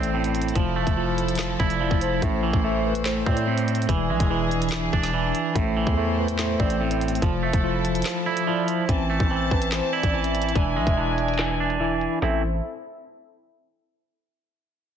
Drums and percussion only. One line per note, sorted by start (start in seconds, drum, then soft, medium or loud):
0.03 closed hi-hat medium
0.24 closed hi-hat medium
0.35 closed hi-hat medium
0.42 closed hi-hat medium
0.49 closed hi-hat medium
0.56 kick loud
0.56 closed hi-hat medium
0.87 kick loud
0.87 closed hi-hat medium
1.18 closed hi-hat medium
1.29 closed hi-hat medium
1.35 snare loud
1.35 clap loud
1.35 closed hi-hat medium
1.42 closed hi-hat medium
1.60 kick medium
1.70 closed hi-hat medium
1.91 kick loud
2.01 closed hi-hat medium
2.22 kick loud
2.22 closed hi-hat medium
2.53 kick loud
2.95 closed hi-hat medium
3.06 snare loud
3.06 clap loud
3.06 closed hi-hat medium
3.26 kick medium
3.37 closed hi-hat medium
3.58 closed hi-hat medium
3.68 closed hi-hat medium
3.75 closed hi-hat medium
3.82 closed hi-hat medium
3.89 kick loud
3.89 closed hi-hat medium
4.20 kick loud
4.20 closed hi-hat medium
4.51 closed hi-hat medium
4.62 closed hi-hat medium
4.69 snare loud
4.69 clap loud
4.69 closed hi-hat medium
4.76 closed hi-hat medium
4.93 kick medium
5.03 snare medium
5.03 closed hi-hat medium
5.35 closed hi-hat medium
5.56 kick loud
5.56 closed hi-hat medium
5.87 kick loud
6.28 closed hi-hat medium
6.39 snare loud
6.39 clap loud
6.39 closed hi-hat medium
6.60 kick medium
6.70 closed hi-hat medium
6.91 closed hi-hat medium
7.01 closed hi-hat medium
7.08 closed hi-hat medium
7.15 closed hi-hat medium
7.22 kick loud
7.22 closed hi-hat medium
7.53 kick loud
7.53 closed hi-hat medium
7.85 closed hi-hat medium
7.95 closed hi-hat medium
8.02 snare loud
8.02 clap loud
8.02 closed hi-hat medium
8.09 closed hi-hat medium
8.37 closed hi-hat medium
8.68 closed hi-hat medium
8.89 kick loud
8.89 closed hi-hat medium
9.20 kick loud
9.51 kick medium
9.62 closed hi-hat medium
9.72 snare loud
9.72 clap loud
9.72 closed hi-hat medium
10.03 kick medium
10.03 closed hi-hat medium
10.24 closed hi-hat medium
10.35 closed hi-hat medium
10.42 closed hi-hat medium
10.49 closed hi-hat soft
10.56 kick loud
10.56 closed hi-hat medium
10.87 kick loud
10.87 closed hi-hat medium
11.18 closed hi-hat medium
11.28 closed hi-hat medium
11.34 closed hi-hat medium
11.39 snare loud
11.39 clap loud
11.39 closed hi-hat medium
11.44 closed hi-hat medium
11.70 closed hi-hat medium
12.01 closed hi-hat medium
12.22 snare loud